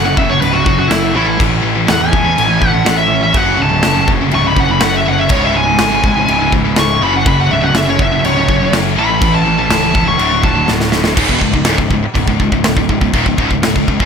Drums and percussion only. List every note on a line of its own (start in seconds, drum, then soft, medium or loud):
0.17 kick medium
0.42 crash medium
0.66 kick medium
0.91 snare loud
0.91 crash medium
1.40 kick loud
1.40 crash medium
1.88 snare loud
1.88 crash medium
2.13 kick loud
2.38 crash medium
2.62 kick medium
2.86 snare loud
2.86 crash medium
3.34 kick loud
3.34 crash medium
3.83 snare loud
3.83 crash medium
4.08 kick loud
4.31 crash medium
4.57 kick medium
4.81 snare loud
4.81 crash medium
5.29 kick loud
5.29 crash medium
5.79 snare loud
5.79 crash medium
6.04 kick medium
6.28 crash medium
6.52 kick medium
6.76 snare loud
6.76 crash medium
7.26 kick loud
7.26 crash medium
7.75 snare loud
7.75 crash medium
7.99 kick medium
8.25 crash medium
8.49 kick medium
8.73 snare loud
8.73 crash medium
9.22 kick loud
9.22 crash medium
9.70 snare loud
9.70 crash medium
9.95 kick medium
10.19 crash medium
10.44 kick medium
10.68 snare medium
10.80 snare medium
10.92 snare medium
11.04 snare loud
11.17 kick loud
11.17 crash loud
11.17 crash medium
11.29 kick medium
11.41 kick medium
11.54 kick medium
11.65 snare loud
11.65 crash medium
11.78 kick medium
11.91 kick medium
12.15 kick medium
12.15 crash medium
12.28 kick medium
12.40 kick medium
12.52 kick medium
12.64 snare loud
12.64 crash medium
12.77 kick loud
12.89 kick medium
13.01 kick medium
13.13 kick loud
13.13 crash medium
13.26 kick medium
13.38 kick loud
13.51 kick medium
13.63 snare loud
13.63 crash medium
13.76 kick medium
13.88 kick medium
14.00 kick loud